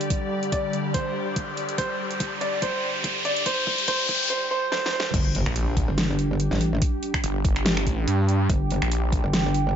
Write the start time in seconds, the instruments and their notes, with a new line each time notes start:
Already playing: ambient pad D3 G3 D4 G4 D5 G5, grand piano D5, riser
0.01 closed hi-hat
0.10 kick, closed hi-hat
0.43 closed hi-hat
0.52 grand piano D5, kick, closed hi-hat
0.73 closed hi-hat
0.94 grand piano C5, kick, closed hi-hat
1.36 kick, closed hi-hat
1.57 closed hi-hat
1.69 closed hi-hat
1.78 grand piano C5, kick, closed hi-hat
2.11 closed hi-hat
2.20 kick, closed hi-hat
2.41 grand piano D5, closed hi-hat
2.62 grand piano C5, kick, closed hi-hat
3.04 kick, closed hi-hat
3.25 grand piano D5, closed hi-hat
3.36 closed hi-hat
3.46 grand piano C5, kick, closed hi-hat
3.67 kick
3.78 closed hi-hat
3.88 grand piano C5, kick, closed hi-hat
4.09 kick, closed hi-hat
4.30 grand piano C5
4.51 grand piano C5
4.72 grand piano C5, snare
4.86 snare
4.93 grand piano C5
5.00 snare
5.14 wobble bass G1, ambient pad G3 D4 G4, kick, closed hi-hat, crash, impact
5.35 ambient pad G4, closed hi-hat
5.46 detuned saw bass A#1, finger snap
5.56 closed hi-hat
5.63 ambient pad G5
5.77 kick, closed hi-hat
5.88 wobble bass G1
5.98 snare, closed hi-hat
6.19 closed hi-hat
6.40 closed hi-hat
6.51 wobble bass A1, snare
6.61 closed hi-hat
6.82 kick, closed hi-hat
7.03 closed hi-hat
7.14 finger snap, kick
7.24 detuned saw bass G1, closed hi-hat
7.45 kick, closed hi-hat
7.56 finger snap
7.66 snare, closed hi-hat
7.77 finger snap
7.87 detuned saw bass A1, kick, closed hi-hat
8.08 detuned saw bass G2, closed hi-hat
8.29 closed hi-hat
8.50 wobble bass G1, kick, closed hi-hat
8.71 closed hi-hat
8.82 detuned saw bass A#1, finger snap
8.92 closed hi-hat
9.13 kick, closed hi-hat
9.24 wobble bass G1
9.34 snare, closed hi-hat
9.54 closed hi-hat